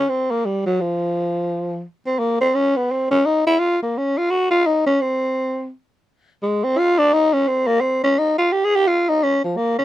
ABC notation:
X:1
M:4/4
L:1/8
Q:"Swing" 1/4=170
K:Fm
V:1 name="Tenor saxophone"
C B, G, _G, F,4- | F,2 z C B, C D _C | C D E _F =F B, D F | _G F E D C4 |
z4 A, C F =D | E D C B, C D E F | (3G A G F E D F, B, D |]